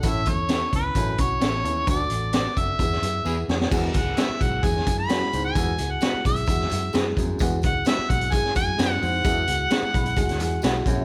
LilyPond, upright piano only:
\new Staff \with { instrumentName = "Upright piano" } { \time 4/4 \key e \mixolydian \tempo 4 = 130 << { r1 | r1 | r1 | r1 |
r1 | r4 \tuplet 3/2 { r8. b''16 b''8 } gis''8 gis''8 \tuplet 3/2 { fis''4 e''8 } | } \\ { <cis' e' a'>8 <cis' e' a'>8 <cis' e' a'>8 <cis' e' b'>8 <cis' e' a'>8 <cis' e' fis'>8 <cis' e' a'>8 <cis' e' b'>8 | <d' fis' a'>8 <d' fis' a'>8 <d' fis' b'>8 <d' fis' a'>8 <b e' gis'>8 <b e' gis'>8 <b e' gis'>8 <b e' gis'>8 | <gis e' fis'>8 <gis e' gis'>8 <gis e' gis'>8 <gis e' fis'>8 <gis e' gis'>8 <gis e' gis'>8 <gis e' fis'>8 <gis e' fis'>8 | <gis e' fis'>8 <gis e' fis'>8 <gis e' fis'>8 <gis e' gis'>8 <gis e' fis'>8 <gis e' fis'>8 <gis e' gis'>8 <gis e' gis'>8 |
<gis e' fis'>8 <gis e' fis'>8 <gis e' fis'>8 <gis e' fis'>8 <gis e' gis'>8 <gis e' fis'>8 <gis e' fis'>8 <gis e' gis'>8 | <gis e' fis'>8 <gis e' fis'>8 <gis e' gis'>8 <gis e' gis'>8 <gis e' fis'>8 <gis e' fis'>8 <gis e' fis'>8 <gis e' fis'>8 | } >> }